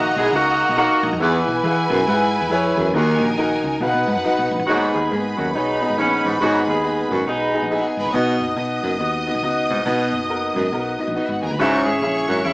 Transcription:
Already playing: A#1 D#3 A#3 D#4 F#4 A#4 D#5 F#5 A#5
0.16 B1 G#3 E4 G#4
0.33 C#2 D#3 A#3 D#4 F#4 A#4 F#5
0.69 B1
0.77 D#3 A#3 D#4 F#4 A#4 F#5
1.03 A#1
1.13 F2
1.20 E2 E3 E4 G#4 B4 F#5 G#5
1.48 B1
1.64 E3 E4 G#4 B4 F5
1.71 F#5
1.90 B1 F#2
2.07 G#2 E4 G4 B4 F#5
2.13 G#4
2.41 E2
2.50 F2 E4 G#4 B4 C#5
2.77 E2 F#2
2.94 D#2 D#3 D#4 F#4 A#4 F#5 G#5
3.20 A#1
3.37 D#4 F#4 A#4 F#5
3.64 C#2
3.80 B1 B2 D#4 F#4 B4 F5 F#5
3.87 F#5
3.94 B2
4.07 G#2
4.16 F#2
4.24 D#4 F#4 B4 F#5
4.39 B1
4.51 A#1
4.59 A1
4.66 G#1 G#2 F#3 A#3 D#4 F#4 G#4 B4 D#5 B5
4.73 B3
4.94 D#2 D#3 B3 G#4
5.11 G#2 A#3 D#4 G#4 D#5
5.16 B3
5.37 D#2 F#2 F#3 D#4 F#4
5.54 B1 B2 G#3 B3 D#4 G#4 C#5
5.81 B3 D#4 G#4 D#5
5.90 G#1
5.97 A#1 G#2 D#3 A#3 C#4 D#4 G#4 D#5
6.02 B3
6.24 A1 G#2
6.40 G#1 G#2 F#3 B3 D#4 F#4 G#4 D#5
6.67 D#2 D#3 B3 G#4
6.83 B3 D#4 G#4 D#5
7.10 G#1 F#2 F#3 D#4 F#4
7.27 B1 B2 G#3 B3 D#4 G#4 D#5
7.54 B3 D#4 G#4 D#5
7.62 A#1
7.70 B3 D#4 E4 G#4 D#5 E5
7.80 F#4 F#5
7.86 G#4 G#5
7.97 G#1 A#4 B4 A#5 B5
8.05 C2
8.09 B3 C#5 C#6
8.13 B1 B2 D#4 F#4 D#5 D#6
8.40 F#1
8.56 B2 B3 D#4 F#4 D#5
8.83 F#1 F#2
8.99 D#2 B3 D#4 F#4 D#5
9.27 B3 D#4 F#4 D#5
9.35 B1
9.43 C#2 B3 D#4 F#4 D#5
9.69 C2 G#2
9.85 B1 B2 B3 D#4 F#4 D#5
10.13 F#1
10.29 B3 D#4 F#4 A#4
10.55 G#1 F#2
10.72 B1 B3 D#4 F#4 A#4
10.98 B3 D#4 F#4 D#5, muted picked electric bass stroke
11.08 A#1
11.15 B3 D#4 F#4 D#5
11.25 G#1 E4 F#4 E5 F#5
11.42 D#2 G#4 A#4 G#5 A#5
11.50 D2 B4 B5
11.58 C#2 G#2 C#3 F#3 C#4 D#4 E4 F#4 G#4 C#5 E5 C#6
11.85 G#1 E3 C#4 G#4
12.02 A#1 C#4 E4 G#4 E5
12.28 G#1 F#2 F#3 D#4 F#4
12.44 E2 C#3 G#3 C#4 E4 G#4 E5

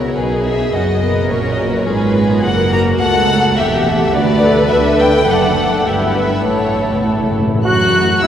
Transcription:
Already playing: C#2 C#3 E4 G#4 A#4 C#5
0.16 B1 B2 D#4 G#4 B4
0.43 E5
0.73 F#1 F#2 C#4 F#4 D#5
1.01 B3 A#4
1.30 A#1 A#2 C#4 F#4 C#5
1.52 D#5
1.62 C#5
1.69 B4
1.78 C#5
1.87 G#1 G#2 C#4 F4 G#4 B4
2.17 B3 G#4
2.44 F#1 F#2 A#3 F#4 A#4 F#5
2.73 A#5
2.99 C#2 A4 F#5
3.04 A3
3.31 A3
3.57 E1 E2 G4 E5
3.87 G4 A4
4.13 D2 D3 B3 F#4 B4 D5
4.44 A4
4.69 D2 D3 A3 A4 E5
4.99 G5
5.27 F#1 F#2 A3 D4 A4 F#5
5.85 G1 G2 B3 E4 G4 E5
5.93 F#5
6.02 E5
6.10 F#5
6.15 B4 E5
6.44 A1 A2 A3 E4 A4 C#5
6.53 A2
6.60 A2
6.69 A2
6.76 A2
6.93 A2
6.99 A2
7.08 A2
7.16 A2
7.23 A2
7.31 A2
7.39 A2
7.47 A2
7.55 A2
7.64 F#2 F#3 F#4 F#5 F#6
8.22 E2 E3 E4 E5 E6

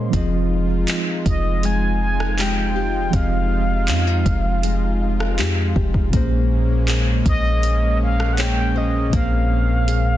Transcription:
Already playing: A#2 A#3 G#4 C5 C#5 D#5
0.10 F1 F3 G#3 C4 D#4 F4, kick, closed hi-hat
0.15 G#4 D#5
0.88 D#4, clap, closed hi-hat
1.26 F1 D#5, kick, closed hi-hat
1.63 G#3 G#5, closed hi-hat
2.03 G#5
2.20 cross-stick
2.38 G#3 D#4 G4 G5, clap, closed hi-hat
2.76 G4
3.10 F1 F3 C4 G4, kick, closed hi-hat
3.15 G#4 D#5 F5
3.88 F2 C#4, clap, closed hi-hat
4.07 D#4
4.26 F1, kick, closed hi-hat
4.63 G#3, closed hi-hat
5.20 cross-stick
5.38 F2 G#3 D#4 G4, clap, closed hi-hat
5.76 F1 G4, kick
5.94 F1, kick
6.10 A#1 A#2 G#3 A#3 C#4, kick, closed hi-hat
6.15 G#4 C5
6.88 G#4, clap, closed hi-hat
7.26 A#1 D#5, kick, closed hi-hat
7.63 C#4, closed hi-hat
8.03 F5
8.20 cross-stick
8.33 F#5
8.38 C#4 G#4 C5 G5, clap, closed hi-hat
8.76 C5 D#5
9.10 A#1 A#2 A#3 C4, kick, closed hi-hat
9.15 G#4 C5 F5
9.20 C#4
9.88 G#4, closed hi-hat

